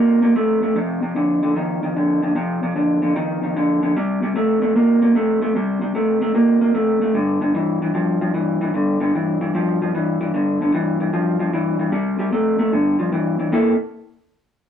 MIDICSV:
0, 0, Header, 1, 2, 480
1, 0, Start_track
1, 0, Tempo, 398671
1, 915, Time_signature, 4, 2, 24, 8
1, 17693, End_track
2, 0, Start_track
2, 0, Title_t, "Clean electric guitar"
2, 0, Program_c, 0, 27
2, 0, Note_on_c, 0, 48, 72
2, 0, Note_on_c, 0, 58, 83
2, 241, Note_off_c, 0, 48, 0
2, 246, Note_off_c, 0, 58, 0
2, 267, Note_on_c, 0, 48, 72
2, 273, Note_on_c, 0, 58, 79
2, 414, Note_off_c, 0, 48, 0
2, 417, Note_off_c, 0, 58, 0
2, 429, Note_on_c, 0, 48, 74
2, 434, Note_on_c, 0, 57, 89
2, 721, Note_off_c, 0, 48, 0
2, 724, Note_off_c, 0, 57, 0
2, 746, Note_on_c, 0, 48, 65
2, 756, Note_on_c, 0, 57, 72
2, 894, Note_off_c, 0, 48, 0
2, 899, Note_off_c, 0, 57, 0
2, 909, Note_on_c, 0, 41, 84
2, 918, Note_on_c, 0, 48, 91
2, 1202, Note_off_c, 0, 41, 0
2, 1206, Note_off_c, 0, 48, 0
2, 1229, Note_on_c, 0, 41, 68
2, 1236, Note_on_c, 0, 48, 74
2, 1376, Note_off_c, 0, 41, 0
2, 1379, Note_off_c, 0, 48, 0
2, 1390, Note_on_c, 0, 41, 69
2, 1398, Note_on_c, 0, 50, 90
2, 1683, Note_off_c, 0, 41, 0
2, 1687, Note_off_c, 0, 50, 0
2, 1718, Note_on_c, 0, 41, 71
2, 1719, Note_on_c, 0, 50, 79
2, 1861, Note_off_c, 0, 41, 0
2, 1862, Note_off_c, 0, 50, 0
2, 1876, Note_on_c, 0, 41, 71
2, 1882, Note_on_c, 0, 51, 87
2, 2166, Note_off_c, 0, 41, 0
2, 2169, Note_off_c, 0, 51, 0
2, 2203, Note_on_c, 0, 41, 68
2, 2204, Note_on_c, 0, 51, 80
2, 2344, Note_off_c, 0, 41, 0
2, 2344, Note_off_c, 0, 51, 0
2, 2363, Note_on_c, 0, 41, 67
2, 2368, Note_on_c, 0, 50, 85
2, 2650, Note_off_c, 0, 41, 0
2, 2652, Note_off_c, 0, 50, 0
2, 2679, Note_on_c, 0, 41, 67
2, 2686, Note_on_c, 0, 50, 71
2, 2819, Note_off_c, 0, 41, 0
2, 2826, Note_off_c, 0, 50, 0
2, 2834, Note_on_c, 0, 41, 78
2, 2840, Note_on_c, 0, 48, 83
2, 3126, Note_off_c, 0, 41, 0
2, 3129, Note_off_c, 0, 48, 0
2, 3165, Note_on_c, 0, 41, 70
2, 3167, Note_on_c, 0, 48, 76
2, 3306, Note_off_c, 0, 41, 0
2, 3307, Note_off_c, 0, 48, 0
2, 3320, Note_on_c, 0, 41, 76
2, 3325, Note_on_c, 0, 50, 79
2, 3609, Note_off_c, 0, 41, 0
2, 3612, Note_off_c, 0, 50, 0
2, 3638, Note_on_c, 0, 41, 70
2, 3647, Note_on_c, 0, 50, 71
2, 3782, Note_off_c, 0, 41, 0
2, 3787, Note_off_c, 0, 50, 0
2, 3796, Note_on_c, 0, 41, 72
2, 3805, Note_on_c, 0, 51, 91
2, 4087, Note_off_c, 0, 41, 0
2, 4092, Note_off_c, 0, 51, 0
2, 4126, Note_on_c, 0, 41, 68
2, 4134, Note_on_c, 0, 51, 73
2, 4267, Note_off_c, 0, 41, 0
2, 4271, Note_off_c, 0, 51, 0
2, 4288, Note_on_c, 0, 41, 75
2, 4295, Note_on_c, 0, 50, 95
2, 4573, Note_off_c, 0, 41, 0
2, 4577, Note_off_c, 0, 50, 0
2, 4604, Note_on_c, 0, 41, 74
2, 4611, Note_on_c, 0, 50, 83
2, 4746, Note_off_c, 0, 41, 0
2, 4750, Note_off_c, 0, 50, 0
2, 4772, Note_on_c, 0, 48, 74
2, 4776, Note_on_c, 0, 55, 84
2, 5056, Note_off_c, 0, 48, 0
2, 5058, Note_off_c, 0, 55, 0
2, 5086, Note_on_c, 0, 48, 73
2, 5093, Note_on_c, 0, 55, 85
2, 5227, Note_off_c, 0, 48, 0
2, 5231, Note_off_c, 0, 55, 0
2, 5244, Note_on_c, 0, 48, 79
2, 5248, Note_on_c, 0, 57, 96
2, 5532, Note_off_c, 0, 48, 0
2, 5534, Note_off_c, 0, 57, 0
2, 5561, Note_on_c, 0, 48, 77
2, 5564, Note_on_c, 0, 57, 88
2, 5705, Note_off_c, 0, 48, 0
2, 5706, Note_off_c, 0, 57, 0
2, 5728, Note_on_c, 0, 48, 75
2, 5730, Note_on_c, 0, 58, 88
2, 6014, Note_off_c, 0, 48, 0
2, 6015, Note_off_c, 0, 58, 0
2, 6043, Note_on_c, 0, 48, 71
2, 6049, Note_on_c, 0, 58, 80
2, 6186, Note_off_c, 0, 48, 0
2, 6189, Note_off_c, 0, 58, 0
2, 6204, Note_on_c, 0, 48, 83
2, 6213, Note_on_c, 0, 57, 82
2, 6492, Note_off_c, 0, 48, 0
2, 6496, Note_off_c, 0, 57, 0
2, 6522, Note_on_c, 0, 48, 70
2, 6529, Note_on_c, 0, 57, 77
2, 6665, Note_off_c, 0, 48, 0
2, 6669, Note_off_c, 0, 57, 0
2, 6685, Note_on_c, 0, 48, 77
2, 6696, Note_on_c, 0, 55, 82
2, 6973, Note_off_c, 0, 48, 0
2, 6978, Note_off_c, 0, 55, 0
2, 7000, Note_on_c, 0, 48, 78
2, 7007, Note_on_c, 0, 55, 73
2, 7144, Note_off_c, 0, 48, 0
2, 7148, Note_off_c, 0, 55, 0
2, 7162, Note_on_c, 0, 48, 75
2, 7167, Note_on_c, 0, 57, 83
2, 7451, Note_off_c, 0, 48, 0
2, 7453, Note_off_c, 0, 57, 0
2, 7478, Note_on_c, 0, 48, 66
2, 7488, Note_on_c, 0, 57, 80
2, 7624, Note_off_c, 0, 48, 0
2, 7629, Note_off_c, 0, 57, 0
2, 7641, Note_on_c, 0, 48, 81
2, 7646, Note_on_c, 0, 58, 86
2, 7930, Note_off_c, 0, 48, 0
2, 7933, Note_off_c, 0, 58, 0
2, 7962, Note_on_c, 0, 48, 74
2, 7966, Note_on_c, 0, 58, 73
2, 8106, Note_off_c, 0, 48, 0
2, 8108, Note_off_c, 0, 58, 0
2, 8118, Note_on_c, 0, 48, 78
2, 8124, Note_on_c, 0, 57, 89
2, 8409, Note_off_c, 0, 48, 0
2, 8412, Note_off_c, 0, 57, 0
2, 8441, Note_on_c, 0, 48, 65
2, 8450, Note_on_c, 0, 57, 75
2, 8585, Note_off_c, 0, 48, 0
2, 8590, Note_off_c, 0, 57, 0
2, 8598, Note_on_c, 0, 43, 78
2, 8604, Note_on_c, 0, 50, 87
2, 8889, Note_off_c, 0, 43, 0
2, 8892, Note_off_c, 0, 50, 0
2, 8924, Note_on_c, 0, 43, 67
2, 8931, Note_on_c, 0, 50, 77
2, 9066, Note_off_c, 0, 43, 0
2, 9070, Note_off_c, 0, 50, 0
2, 9085, Note_on_c, 0, 43, 73
2, 9089, Note_on_c, 0, 52, 85
2, 9372, Note_off_c, 0, 43, 0
2, 9374, Note_off_c, 0, 52, 0
2, 9412, Note_on_c, 0, 43, 66
2, 9419, Note_on_c, 0, 52, 77
2, 9546, Note_off_c, 0, 43, 0
2, 9554, Note_off_c, 0, 52, 0
2, 9560, Note_on_c, 0, 43, 80
2, 9568, Note_on_c, 0, 53, 76
2, 9850, Note_off_c, 0, 43, 0
2, 9854, Note_off_c, 0, 53, 0
2, 9889, Note_on_c, 0, 43, 74
2, 9891, Note_on_c, 0, 53, 80
2, 10024, Note_off_c, 0, 43, 0
2, 10030, Note_off_c, 0, 53, 0
2, 10038, Note_on_c, 0, 43, 77
2, 10044, Note_on_c, 0, 52, 83
2, 10329, Note_off_c, 0, 43, 0
2, 10332, Note_off_c, 0, 52, 0
2, 10365, Note_on_c, 0, 43, 72
2, 10370, Note_on_c, 0, 52, 81
2, 10507, Note_off_c, 0, 43, 0
2, 10509, Note_off_c, 0, 52, 0
2, 10522, Note_on_c, 0, 43, 87
2, 10528, Note_on_c, 0, 50, 81
2, 10811, Note_off_c, 0, 43, 0
2, 10813, Note_off_c, 0, 50, 0
2, 10842, Note_on_c, 0, 43, 73
2, 10848, Note_on_c, 0, 50, 73
2, 10985, Note_off_c, 0, 43, 0
2, 10988, Note_off_c, 0, 50, 0
2, 11012, Note_on_c, 0, 43, 68
2, 11020, Note_on_c, 0, 52, 79
2, 11296, Note_off_c, 0, 43, 0
2, 11300, Note_off_c, 0, 52, 0
2, 11329, Note_on_c, 0, 43, 75
2, 11332, Note_on_c, 0, 52, 81
2, 11469, Note_off_c, 0, 43, 0
2, 11470, Note_off_c, 0, 52, 0
2, 11485, Note_on_c, 0, 43, 72
2, 11496, Note_on_c, 0, 53, 86
2, 11772, Note_off_c, 0, 43, 0
2, 11777, Note_off_c, 0, 53, 0
2, 11817, Note_on_c, 0, 43, 70
2, 11824, Note_on_c, 0, 53, 86
2, 11952, Note_off_c, 0, 43, 0
2, 11956, Note_off_c, 0, 53, 0
2, 11974, Note_on_c, 0, 43, 76
2, 11978, Note_on_c, 0, 52, 89
2, 12256, Note_off_c, 0, 43, 0
2, 12259, Note_off_c, 0, 52, 0
2, 12287, Note_on_c, 0, 43, 73
2, 12290, Note_on_c, 0, 52, 74
2, 12427, Note_off_c, 0, 43, 0
2, 12429, Note_off_c, 0, 52, 0
2, 12450, Note_on_c, 0, 43, 83
2, 12455, Note_on_c, 0, 50, 85
2, 12734, Note_off_c, 0, 43, 0
2, 12737, Note_off_c, 0, 50, 0
2, 12775, Note_on_c, 0, 43, 72
2, 12786, Note_on_c, 0, 50, 78
2, 12911, Note_off_c, 0, 43, 0
2, 12917, Note_off_c, 0, 50, 0
2, 12930, Note_on_c, 0, 43, 78
2, 12937, Note_on_c, 0, 52, 90
2, 13214, Note_off_c, 0, 43, 0
2, 13217, Note_off_c, 0, 52, 0
2, 13246, Note_on_c, 0, 43, 77
2, 13251, Note_on_c, 0, 52, 83
2, 13386, Note_off_c, 0, 43, 0
2, 13389, Note_off_c, 0, 52, 0
2, 13399, Note_on_c, 0, 43, 74
2, 13407, Note_on_c, 0, 53, 95
2, 13688, Note_off_c, 0, 43, 0
2, 13692, Note_off_c, 0, 53, 0
2, 13720, Note_on_c, 0, 43, 72
2, 13729, Note_on_c, 0, 53, 71
2, 13863, Note_off_c, 0, 43, 0
2, 13867, Note_off_c, 0, 53, 0
2, 13883, Note_on_c, 0, 43, 73
2, 13889, Note_on_c, 0, 52, 91
2, 14170, Note_off_c, 0, 43, 0
2, 14173, Note_off_c, 0, 52, 0
2, 14198, Note_on_c, 0, 43, 76
2, 14204, Note_on_c, 0, 52, 79
2, 14342, Note_off_c, 0, 43, 0
2, 14345, Note_off_c, 0, 52, 0
2, 14353, Note_on_c, 0, 48, 87
2, 14353, Note_on_c, 0, 55, 90
2, 14644, Note_off_c, 0, 48, 0
2, 14644, Note_off_c, 0, 55, 0
2, 14672, Note_on_c, 0, 48, 73
2, 14681, Note_on_c, 0, 55, 87
2, 14819, Note_off_c, 0, 48, 0
2, 14823, Note_off_c, 0, 55, 0
2, 14838, Note_on_c, 0, 48, 80
2, 14841, Note_on_c, 0, 57, 89
2, 15127, Note_off_c, 0, 48, 0
2, 15128, Note_off_c, 0, 57, 0
2, 15153, Note_on_c, 0, 48, 69
2, 15161, Note_on_c, 0, 57, 83
2, 15298, Note_off_c, 0, 48, 0
2, 15302, Note_off_c, 0, 57, 0
2, 15318, Note_on_c, 0, 43, 67
2, 15325, Note_on_c, 0, 50, 87
2, 15606, Note_off_c, 0, 43, 0
2, 15610, Note_off_c, 0, 50, 0
2, 15638, Note_on_c, 0, 43, 65
2, 15646, Note_on_c, 0, 53, 78
2, 15780, Note_off_c, 0, 43, 0
2, 15785, Note_off_c, 0, 53, 0
2, 15798, Note_on_c, 0, 43, 73
2, 15803, Note_on_c, 0, 52, 87
2, 16086, Note_off_c, 0, 43, 0
2, 16088, Note_off_c, 0, 52, 0
2, 16122, Note_on_c, 0, 43, 64
2, 16129, Note_on_c, 0, 52, 77
2, 16262, Note_off_c, 0, 43, 0
2, 16265, Note_off_c, 0, 52, 0
2, 16276, Note_on_c, 0, 48, 89
2, 16285, Note_on_c, 0, 58, 94
2, 16291, Note_on_c, 0, 64, 103
2, 16296, Note_on_c, 0, 69, 93
2, 16532, Note_off_c, 0, 48, 0
2, 16537, Note_off_c, 0, 58, 0
2, 16540, Note_off_c, 0, 64, 0
2, 16542, Note_off_c, 0, 69, 0
2, 17693, End_track
0, 0, End_of_file